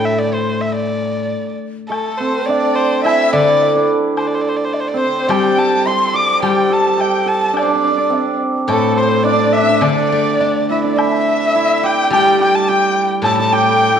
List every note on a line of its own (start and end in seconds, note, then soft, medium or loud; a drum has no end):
0.00 1.32 A2 medium
0.00 0.19 D3 medium
0.05 0.20 E5 medium
0.18 0.35 D5 medium
0.34 0.62 C5 medium
0.61 0.74 E5 medium
0.75 1.57 D5 medium
1.89 6.33 A3 medium
1.89 2.19 A4 medium
1.89 2.50 A4 medium
1.89 high woodblock soft
2.17 4.94 C4 medium
2.17 2.47 C5 medium
2.45 3.32 D4 medium
2.45 2.76 D5 medium
2.45 3.07 D5 medium
2.50 low woodblock soft
2.75 3.03 C5 medium
3.04 6.52 E4 medium
3.04 3.29 E5 loud
3.04 3.35 E5 medium
3.04 high woodblock medium
3.29 3.75 D4 medium
3.29 3.88 D5 medium
3.29 3.33 E5 medium
3.33 5.00 D3 medium
3.33 3.89 D5 medium
3.62 low woodblock soft
3.76 7.49 D4 medium
4.17 4.29 C5 medium
4.17 high woodblock soft
4.27 4.36 D5 medium
4.34 4.42 C5 medium
4.41 4.50 D5 medium
4.49 4.58 C5 medium
4.56 4.66 D5 medium
4.65 4.75 C5 medium
4.73 4.81 D5 medium
4.73 low woodblock soft
4.80 4.89 C5 medium
4.88 4.99 D5 medium
4.94 8.09 C4 medium
4.94 5.30 C5 medium
4.94 5.32 C5 medium
5.28 6.41 G3 medium
5.28 6.42 G4 medium
5.28 5.87 G5 medium
5.28 5.60 G5 medium
5.28 high woodblock medium
5.58 6.70 A4 medium
5.58 5.89 A5 medium
5.86 8.51 C5 medium
5.86 6.16 C6 medium
5.86 6.17 C6 medium
5.86 low woodblock soft
6.14 8.60 D5 medium
6.14 6.42 D6 medium
6.42 8.13 G3 soft
6.42 6.97 G4 medium
6.42 6.74 G5 medium
6.42 high woodblock soft
6.70 7.26 A4 medium
6.70 7.03 A5 medium
6.70 7.02 A5 medium
6.97 10.11 G4 medium
6.97 7.30 G5 medium
6.97 low woodblock soft
7.01 7.29 G5 medium
7.26 10.19 A4 medium
7.26 7.60 A5 medium
7.26 7.56 A5 medium
7.53 7.62 D4 medium
7.53 high woodblock medium
7.57 8.38 D5 medium
7.57 7.64 D5 medium
7.63 7.67 D4 medium
7.63 7.72 C5 medium
7.68 7.75 D4 medium
7.68 8.41 D5 medium
7.75 7.84 D4 medium
7.84 7.91 D4 medium
7.91 7.97 D4 soft
7.98 9.24 D4 medium
8.10 12.10 C4 medium
8.10 low woodblock soft
8.68 9.82 A2 medium
8.68 13.12 A3 medium
8.68 8.99 A4 medium
8.68 8.96 A4 medium
8.68 high woodblock medium
8.96 9.23 C5 medium
8.96 9.25 C5 medium
9.23 9.32 D4 medium
9.23 9.54 D5 medium
9.23 9.56 D5 medium
9.23 low woodblock soft
9.33 9.39 D4 medium
9.40 9.46 D4 medium
9.47 9.56 D4 medium
9.53 9.63 D4 medium
9.53 9.84 E5 medium
9.53 9.85 E5 loud
9.63 9.70 D4 medium
9.70 9.81 D4 medium
9.81 11.54 D3 medium
9.81 10.83 D4 medium
9.81 10.68 D5 medium
9.81 high woodblock medium
10.12 11.27 A3 soft
10.40 11.55 D4 soft
10.40 low woodblock soft
10.69 10.96 E4 medium
10.69 10.82 E5 medium
10.69 10.83 E5 medium
10.84 14.00 D4 medium
10.84 11.00 D5 medium
10.84 10.99 D5 medium
10.96 11.54 E4 medium
10.96 11.87 E5 medium
10.96 11.85 E5 medium
10.96 high woodblock medium
11.55 14.00 E4 medium
11.83 12.13 G4 medium
11.83 12.11 G5 medium
11.83 12.13 G5 medium
12.10 13.79 G3 medium
12.10 12.40 G4 medium
12.10 12.38 G5 medium
12.10 12.39 G5 loud
12.10 high woodblock medium
12.41 12.69 G4 medium
12.41 12.57 G5 medium
12.55 12.70 A5 medium
12.68 13.52 G4 medium
12.68 13.10 G5 medium
13.22 14.00 A2 medium
13.22 13.39 A4 medium
13.22 13.37 A5 loud
13.22 13.38 A5 medium
13.22 high woodblock medium
13.38 13.96 A4 medium
13.38 13.54 A5 loud
13.38 13.56 A5 medium
13.53 14.00 G4 medium
13.53 14.00 G5 loud
13.53 14.00 G5 medium
13.96 14.00 A4 medium